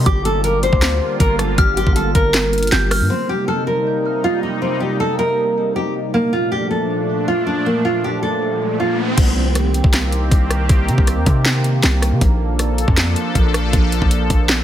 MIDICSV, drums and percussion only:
0, 0, Header, 1, 2, 480
1, 0, Start_track
1, 0, Tempo, 379747
1, 78, Time_signature, 4, 2, 24, 8
1, 18502, End_track
2, 0, Start_track
2, 0, Title_t, "Drums"
2, 78, Note_on_c, 9, 36, 114
2, 78, Note_on_c, 9, 42, 88
2, 204, Note_off_c, 9, 36, 0
2, 204, Note_off_c, 9, 42, 0
2, 319, Note_on_c, 9, 42, 70
2, 445, Note_off_c, 9, 42, 0
2, 555, Note_on_c, 9, 42, 81
2, 682, Note_off_c, 9, 42, 0
2, 796, Note_on_c, 9, 42, 70
2, 918, Note_on_c, 9, 36, 99
2, 922, Note_off_c, 9, 42, 0
2, 1038, Note_on_c, 9, 38, 126
2, 1040, Note_on_c, 9, 42, 96
2, 1044, Note_off_c, 9, 36, 0
2, 1048, Note_on_c, 9, 39, 102
2, 1164, Note_off_c, 9, 38, 0
2, 1167, Note_off_c, 9, 42, 0
2, 1174, Note_off_c, 9, 39, 0
2, 1517, Note_on_c, 9, 36, 104
2, 1520, Note_on_c, 9, 42, 89
2, 1644, Note_off_c, 9, 36, 0
2, 1647, Note_off_c, 9, 42, 0
2, 1757, Note_on_c, 9, 37, 94
2, 1760, Note_on_c, 9, 42, 81
2, 1883, Note_off_c, 9, 37, 0
2, 1886, Note_off_c, 9, 42, 0
2, 1998, Note_on_c, 9, 36, 120
2, 1998, Note_on_c, 9, 42, 85
2, 2124, Note_off_c, 9, 42, 0
2, 2125, Note_off_c, 9, 36, 0
2, 2239, Note_on_c, 9, 42, 73
2, 2359, Note_on_c, 9, 36, 93
2, 2365, Note_off_c, 9, 42, 0
2, 2476, Note_on_c, 9, 42, 83
2, 2485, Note_off_c, 9, 36, 0
2, 2602, Note_off_c, 9, 42, 0
2, 2718, Note_on_c, 9, 36, 92
2, 2718, Note_on_c, 9, 42, 71
2, 2844, Note_off_c, 9, 42, 0
2, 2845, Note_off_c, 9, 36, 0
2, 2959, Note_on_c, 9, 38, 121
2, 2961, Note_on_c, 9, 42, 97
2, 2969, Note_on_c, 9, 39, 96
2, 3085, Note_off_c, 9, 38, 0
2, 3088, Note_off_c, 9, 42, 0
2, 3096, Note_off_c, 9, 39, 0
2, 3199, Note_on_c, 9, 42, 46
2, 3259, Note_off_c, 9, 42, 0
2, 3259, Note_on_c, 9, 42, 57
2, 3319, Note_off_c, 9, 42, 0
2, 3319, Note_on_c, 9, 42, 70
2, 3379, Note_off_c, 9, 42, 0
2, 3379, Note_on_c, 9, 42, 79
2, 3439, Note_on_c, 9, 38, 106
2, 3441, Note_off_c, 9, 42, 0
2, 3441, Note_on_c, 9, 42, 92
2, 3449, Note_on_c, 9, 39, 88
2, 3566, Note_off_c, 9, 38, 0
2, 3568, Note_off_c, 9, 42, 0
2, 3576, Note_off_c, 9, 39, 0
2, 3679, Note_on_c, 9, 37, 96
2, 3682, Note_on_c, 9, 46, 84
2, 3805, Note_off_c, 9, 37, 0
2, 3808, Note_off_c, 9, 46, 0
2, 11598, Note_on_c, 9, 42, 82
2, 11598, Note_on_c, 9, 49, 99
2, 11599, Note_on_c, 9, 36, 113
2, 11725, Note_off_c, 9, 36, 0
2, 11725, Note_off_c, 9, 42, 0
2, 11725, Note_off_c, 9, 49, 0
2, 12076, Note_on_c, 9, 42, 89
2, 12079, Note_on_c, 9, 37, 63
2, 12202, Note_off_c, 9, 42, 0
2, 12205, Note_off_c, 9, 37, 0
2, 12317, Note_on_c, 9, 42, 63
2, 12438, Note_on_c, 9, 36, 96
2, 12443, Note_off_c, 9, 42, 0
2, 12558, Note_on_c, 9, 38, 119
2, 12560, Note_on_c, 9, 42, 89
2, 12565, Note_off_c, 9, 36, 0
2, 12568, Note_on_c, 9, 39, 99
2, 12685, Note_off_c, 9, 38, 0
2, 12687, Note_off_c, 9, 42, 0
2, 12695, Note_off_c, 9, 39, 0
2, 12797, Note_on_c, 9, 42, 74
2, 12924, Note_off_c, 9, 42, 0
2, 13038, Note_on_c, 9, 36, 97
2, 13041, Note_on_c, 9, 42, 81
2, 13164, Note_off_c, 9, 36, 0
2, 13167, Note_off_c, 9, 42, 0
2, 13277, Note_on_c, 9, 37, 95
2, 13281, Note_on_c, 9, 42, 79
2, 13404, Note_off_c, 9, 37, 0
2, 13407, Note_off_c, 9, 42, 0
2, 13517, Note_on_c, 9, 42, 85
2, 13518, Note_on_c, 9, 36, 109
2, 13643, Note_off_c, 9, 42, 0
2, 13645, Note_off_c, 9, 36, 0
2, 13759, Note_on_c, 9, 42, 62
2, 13879, Note_on_c, 9, 36, 90
2, 13885, Note_off_c, 9, 42, 0
2, 13997, Note_on_c, 9, 42, 86
2, 13999, Note_on_c, 9, 37, 65
2, 14005, Note_off_c, 9, 36, 0
2, 14123, Note_off_c, 9, 42, 0
2, 14126, Note_off_c, 9, 37, 0
2, 14237, Note_on_c, 9, 42, 67
2, 14238, Note_on_c, 9, 36, 89
2, 14364, Note_off_c, 9, 36, 0
2, 14364, Note_off_c, 9, 42, 0
2, 14478, Note_on_c, 9, 38, 116
2, 14488, Note_on_c, 9, 39, 99
2, 14605, Note_off_c, 9, 38, 0
2, 14615, Note_off_c, 9, 39, 0
2, 14718, Note_on_c, 9, 42, 70
2, 14844, Note_off_c, 9, 42, 0
2, 14958, Note_on_c, 9, 38, 108
2, 14960, Note_on_c, 9, 42, 82
2, 14968, Note_on_c, 9, 39, 83
2, 15084, Note_off_c, 9, 38, 0
2, 15086, Note_off_c, 9, 42, 0
2, 15094, Note_off_c, 9, 39, 0
2, 15197, Note_on_c, 9, 37, 89
2, 15200, Note_on_c, 9, 42, 83
2, 15323, Note_off_c, 9, 37, 0
2, 15327, Note_off_c, 9, 42, 0
2, 15438, Note_on_c, 9, 42, 84
2, 15439, Note_on_c, 9, 36, 114
2, 15565, Note_off_c, 9, 36, 0
2, 15565, Note_off_c, 9, 42, 0
2, 15916, Note_on_c, 9, 42, 90
2, 15919, Note_on_c, 9, 37, 65
2, 16042, Note_off_c, 9, 42, 0
2, 16045, Note_off_c, 9, 37, 0
2, 16157, Note_on_c, 9, 42, 63
2, 16278, Note_on_c, 9, 36, 94
2, 16284, Note_off_c, 9, 42, 0
2, 16398, Note_on_c, 9, 38, 123
2, 16400, Note_on_c, 9, 42, 89
2, 16405, Note_off_c, 9, 36, 0
2, 16408, Note_on_c, 9, 39, 96
2, 16525, Note_off_c, 9, 38, 0
2, 16527, Note_off_c, 9, 42, 0
2, 16535, Note_off_c, 9, 39, 0
2, 16637, Note_on_c, 9, 42, 73
2, 16764, Note_off_c, 9, 42, 0
2, 16877, Note_on_c, 9, 36, 100
2, 16880, Note_on_c, 9, 42, 80
2, 17004, Note_off_c, 9, 36, 0
2, 17006, Note_off_c, 9, 42, 0
2, 17117, Note_on_c, 9, 37, 96
2, 17120, Note_on_c, 9, 42, 83
2, 17243, Note_off_c, 9, 37, 0
2, 17247, Note_off_c, 9, 42, 0
2, 17358, Note_on_c, 9, 36, 112
2, 17358, Note_on_c, 9, 42, 85
2, 17485, Note_off_c, 9, 36, 0
2, 17485, Note_off_c, 9, 42, 0
2, 17599, Note_on_c, 9, 42, 62
2, 17718, Note_on_c, 9, 36, 88
2, 17725, Note_off_c, 9, 42, 0
2, 17835, Note_on_c, 9, 42, 89
2, 17845, Note_off_c, 9, 36, 0
2, 17961, Note_off_c, 9, 42, 0
2, 18076, Note_on_c, 9, 42, 69
2, 18077, Note_on_c, 9, 36, 89
2, 18203, Note_off_c, 9, 42, 0
2, 18204, Note_off_c, 9, 36, 0
2, 18317, Note_on_c, 9, 38, 121
2, 18327, Note_on_c, 9, 39, 97
2, 18444, Note_off_c, 9, 38, 0
2, 18454, Note_off_c, 9, 39, 0
2, 18502, End_track
0, 0, End_of_file